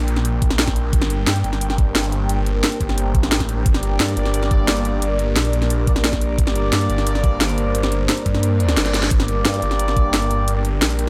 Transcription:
0.00 0.75 A#1 loud
0.00 11.09 A#3 medium
0.00 11.09 D4 medium
0.00 11.09 G4 medium
0.00 11.09 A#4 medium
0.00 0.92 D5 medium
0.00 4.14 G5 medium
0.08 closed hi-hat medium
0.16 snare soft
0.25 closed hi-hat medium
0.42 kick loud
0.42 closed hi-hat medium
0.50 snare medium
0.59 snare loud
0.59 closed hi-hat medium
0.67 kick medium
0.67 snare soft
0.67 closed hi-hat soft
0.76 0.92 A#1 loud
0.76 closed hi-hat medium
0.93 1.26 G1 loud
0.93 3.65 C5 medium
0.93 kick loud
0.93 closed hi-hat medium
1.02 snare medium
1.10 closed hi-hat medium
1.27 1.43 G2 loud
1.27 snare loud
1.27 closed hi-hat medium
1.36 closed hi-hat soft
1.44 2.28 G1 medium
1.44 closed hi-hat medium
1.53 snare soft
1.61 closed hi-hat medium
1.70 snare soft
1.78 kick loud
1.78 closed hi-hat medium
1.95 snare loud
1.95 closed hi-hat medium
2.04 closed hi-hat soft
2.12 closed hi-hat medium
2.29 2.62 G1 loud
2.29 closed hi-hat medium
2.46 closed hi-hat medium
2.64 snare loud
2.64 closed hi-hat medium
2.72 closed hi-hat soft
2.81 3.30 G1 loud
2.81 kick medium
2.81 closed hi-hat medium
2.89 snare soft
2.98 closed hi-hat medium
3.15 kick loud
3.15 closed hi-hat medium
3.23 snare medium
3.32 3.64 A1 loud
3.32 snare loud
3.32 closed hi-hat medium
3.40 kick medium
3.40 snare soft
3.40 closed hi-hat soft
3.49 closed hi-hat medium
3.66 3.98 G1 loud
3.66 6.37 D5 medium
3.66 kick loud
3.66 closed hi-hat medium
3.74 5.09 A#3 loud
3.74 5.09 G4 medium
3.74 5.09 D5 loud
3.74 snare medium
3.83 closed hi-hat medium
4.00 4.16 G2 loud
4.00 snare loud
4.00 closed hi-hat medium
4.08 9.59 D5 medium
4.08 closed hi-hat soft
4.17 5.01 G1 loud
4.17 closed hi-hat medium
4.25 snare soft
4.34 closed hi-hat medium
4.43 snare soft
4.51 kick loud
4.51 closed hi-hat medium
4.68 snare loud
4.68 closed hi-hat medium
4.77 closed hi-hat soft
4.85 closed hi-hat medium
5.02 5.35 G1 loud
5.02 closed hi-hat medium
5.11 5.16 A#3 medium
5.11 5.16 G4 medium
5.11 5.16 D5 medium
5.19 closed hi-hat medium
5.36 6.20 A#1 medium
5.36 snare loud
5.36 closed hi-hat medium
5.45 closed hi-hat soft
5.53 closed hi-hat medium
5.62 snare soft
5.70 closed hi-hat medium
5.87 5.93 A#3 medium
5.87 5.93 G4 medium
5.87 5.93 D5 medium
5.87 kick loud
5.87 closed hi-hat medium
5.96 snare medium
6.04 snare loud
6.04 closed hi-hat medium
6.13 kick medium
6.13 snare soft
6.13 closed hi-hat soft
6.21 6.37 A#1 loud
6.21 closed hi-hat medium
6.38 6.71 G1 loud
6.38 9.10 C5 medium
6.38 kick loud
6.38 closed hi-hat medium
6.47 7.81 A#3 loud
6.47 7.81 G4 medium
6.47 7.81 D5 loud
6.47 snare medium
6.56 closed hi-hat medium
6.73 6.88 G2 medium
6.73 snare loud
6.73 closed hi-hat loud
6.81 closed hi-hat soft
6.90 7.74 G1 loud
6.90 closed hi-hat medium
6.98 snare soft
7.07 closed hi-hat medium
7.15 snare soft
7.24 kick loud
7.24 closed hi-hat medium
7.41 snare loud
7.41 closed hi-hat medium
7.49 closed hi-hat soft
7.58 closed hi-hat medium
7.75 8.08 G1 loud
7.75 closed hi-hat medium
7.83 7.88 A#3 medium
7.83 7.88 G4 medium
7.83 7.88 D5 medium
7.83 snare medium
7.92 closed hi-hat medium
8.09 snare loud
8.09 closed hi-hat loud
8.17 closed hi-hat soft
8.26 8.76 G2 loud
8.26 kick medium
8.26 closed hi-hat medium
8.34 snare soft
8.43 closed hi-hat medium
8.43 reverse cymbal medium
8.60 closed hi-hat medium
8.69 8.92 A#3 medium
8.69 8.92 G4 medium
8.69 8.92 D5 medium
8.69 snare medium
8.69 closed hi-hat soft
8.77 8.93 G1 loud
8.77 snare loud
8.77 closed hi-hat loud
8.86 snare medium
8.86 closed hi-hat soft
8.94 9.10 G1 loud
8.94 9.02 A#3 medium
8.94 9.02 G4 medium
8.94 9.02 D5 medium
8.94 snare medium
8.94 closed hi-hat medium
9.03 snare medium
9.11 9.44 G1 loud
9.11 11.09 D5 medium
9.11 kick loud
9.11 closed hi-hat loud
9.20 10.54 A#3 loud
9.20 10.54 G4 medium
9.20 10.54 D5 loud
9.20 snare medium
9.28 closed hi-hat medium
9.45 9.61 G2 loud
9.45 snare loud
9.45 closed hi-hat loud
9.54 11.09 G5 medium
9.54 closed hi-hat soft
9.62 10.46 G1 medium
9.62 closed hi-hat medium
9.71 snare soft
9.79 closed hi-hat medium
9.88 snare soft
9.96 kick loud
9.96 closed hi-hat medium
10.14 snare loud
10.14 closed hi-hat medium
10.22 closed hi-hat soft
10.31 closed hi-hat medium
10.48 10.80 G1 loud
10.48 closed hi-hat medium
10.56 10.61 A#3 medium
10.56 10.61 G4 medium
10.56 10.61 D5 medium
10.65 closed hi-hat medium
10.82 11.09 A#1 loud
10.82 snare loud
10.82 closed hi-hat medium
10.90 closed hi-hat soft
10.99 closed hi-hat medium

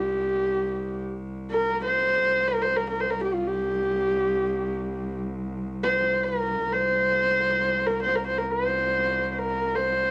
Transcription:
0.00 2.26 C2 medium
0.00 1.01 G4 medium
1.52 1.82 A#4 medium
1.85 2.50 C5 medium
2.27 6.63 C2 medium
2.48 2.64 A#4 medium
2.63 2.78 C5 medium
2.77 2.88 A#4 medium
2.90 3.02 A#4 medium
3.01 3.12 C5 medium
3.11 3.22 A#4 medium
3.24 3.36 G4 medium
3.34 3.49 F4 medium
3.48 5.19 G4 medium
5.84 6.25 C5 medium
6.24 6.74 A#4 medium
6.64 10.11 C2 medium
6.72 7.88 C5 medium
7.86 8.02 A#4 medium
8.02 8.17 C5 medium
8.16 8.26 A#4 medium
8.27 8.40 C5 medium
8.38 8.53 A#4 medium
8.52 9.32 C5 medium
9.32 9.40 C5 medium
9.39 9.76 A#4 medium
9.75 10.11 C5 medium

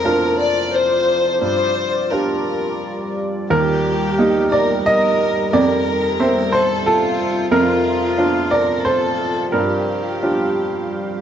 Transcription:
0.00 1.44 F2 medium
0.00 1.41 C4 medium
0.00 3.51 F4 medium
0.00 0.37 A#4 loud
0.00 3.51 D5 medium
0.05 1.37 D4 soft
0.05 1.37 F4 soft
0.05 1.38 A#4 medium
0.40 0.72 D5 medium
0.73 1.41 C5 medium
1.41 2.09 G2 soft
1.41 3.49 G3 medium
1.41 2.10 C5 medium
2.12 3.46 D4 soft
2.12 3.47 F4 soft
2.12 3.47 G4 soft
2.12 3.16 A#4 medium
3.50 4.16 D#2 medium
3.50 5.48 G3 medium
3.50 5.49 D#4 medium
3.50 4.48 G4 medium
3.50 4.48 A#4 medium
3.50 5.49 A#4 medium
4.19 5.49 A#3 soft
4.19 5.49 D#4 medium
4.19 5.49 G4 medium
4.52 4.84 A#4 medium
4.52 4.83 D5 medium
4.85 5.51 A#4 medium
4.85 5.49 D#5 medium
5.53 6.17 F2 medium
5.53 9.53 C4 medium
5.53 6.50 A#4 medium
5.53 7.52 C5 medium
5.53 6.48 D5 medium
5.53 7.52 E5 medium
6.20 7.48 C4 medium
6.20 6.51 C5 medium
6.20 7.48 E5 medium
6.52 6.86 A4 medium
6.52 6.83 C5 medium
6.86 7.50 F4 medium
6.86 7.48 A4 medium
7.51 8.16 F2 medium
7.51 8.49 F4 medium
7.51 11.21 F4 medium
7.51 8.47 A#4 medium
7.51 11.21 F5 medium
8.18 9.49 D4 medium
8.18 9.49 F4 medium
8.51 8.85 A#4 medium
8.51 8.82 D5 medium
8.85 9.53 A4 medium
8.85 9.49 C5 medium
9.52 10.21 G2 medium
9.52 11.21 G3 medium
9.52 11.21 G4 medium
9.52 11.21 A#4 medium
10.23 11.21 D4 soft
10.23 11.21 F4 soft
10.23 11.21 G4 soft

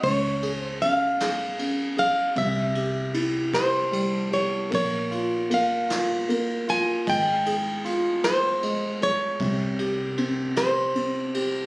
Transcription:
0.03 2.32 C#2 medium
0.03 0.81 C#4 medium
0.03 0.59 C#5 medium
0.03 kick medium
0.03 ride medium
0.42 1.19 G#4 medium
0.42 ride soft
0.59 0.81 C5 medium
0.81 1.57 C#4 medium
0.81 1.98 F5 loud
0.81 ride medium
1.20 1.95 G#4 medium
1.20 snare medium
1.20 ride medium
1.59 2.34 C#4 medium
1.59 ride soft
1.97 2.35 G#4 medium
1.97 2.38 F5 medium
1.97 ride medium
2.35 4.68 C2 medium
2.35 4.67 C3 medium
2.35 3.11 E5 medium
2.35 kick medium
2.35 ride medium
2.75 3.52 G4 medium
2.75 ride soft
3.14 4.68 E4 medium
3.14 ride medium
3.53 4.29 G4 medium
3.53 4.33 C5 medium
3.53 kick medium
3.53 snare medium
3.53 ride medium
3.92 4.69 G3 medium
3.92 ride medium
4.31 4.70 G4 soft
4.31 4.70 C#5 medium
4.31 ride soft
4.70 7.03 A#1 medium
4.70 5.48 A#3 medium
4.70 kick medium
4.70 ride medium
4.75 5.54 C#5 medium
5.11 5.87 F4 medium
5.11 ride soft
5.50 6.27 A#3 medium
5.50 ride medium
5.54 6.69 F5 medium
5.89 6.66 F4 medium
5.89 snare medium
5.89 ride medium
6.29 7.05 A#3 medium
6.29 ride medium
6.68 7.06 F4 medium
6.68 7.09 G#5 loud
6.68 ride soft
7.07 9.36 G#1 medium
7.07 8.61 G#3 medium
7.07 7.82 G5 medium
7.07 kick medium
7.07 ride medium
7.46 8.22 G#4 medium
7.46 ride medium
7.85 9.36 F4 medium
7.85 ride medium
8.23 9.00 G#4 medium
8.23 9.03 C5 medium
8.23 snare medium
8.23 ride medium
8.63 9.38 G#3 medium
8.63 ride soft
9.01 9.39 G#4 medium
9.01 10.14 C#5 loud
9.01 ride medium
9.40 11.66 C2 medium
9.40 11.66 C3 medium
9.40 kick medium
9.40 ride medium
9.79 10.55 G4 medium
9.79 ride soft
10.17 10.94 C4 medium
10.17 ride soft
10.56 11.33 G4 medium
10.56 11.66 C5 medium
10.56 snare medium
10.56 ride medium
10.95 11.66 C4 medium
10.95 ride soft
11.34 11.66 G4 medium
11.34 ride soft

